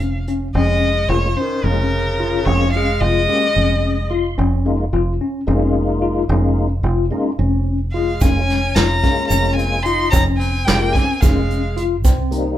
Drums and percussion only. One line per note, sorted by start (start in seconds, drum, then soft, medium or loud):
0.00 closed hi-hat soft
0.27 closed hi-hat medium
8.21 kick medium
8.21 closed hi-hat medium
8.21 shaker soft
8.50 snare soft
8.50 closed hi-hat medium
8.75 snare loud
8.75 closed hi-hat medium
8.75 shaker soft
9.04 kick medium
9.04 closed hi-hat medium
9.31 closed hi-hat medium
9.31 shaker medium
9.59 closed hi-hat medium
9.85 closed hi-hat medium
10.13 kick loud
10.13 closed hi-hat medium
10.13 shaker medium
10.41 closed hi-hat medium
10.68 snare loud
10.68 closed hi-hat medium
10.68 shaker soft
10.95 kick medium
10.95 closed hi-hat medium
11.22 kick loud
11.22 closed hi-hat medium
11.22 shaker medium
11.50 closed hi-hat medium
11.77 closed hi-hat medium
12.05 kick loud
12.05 closed hi-hat medium
12.05 shaker medium
12.32 closed hi-hat medium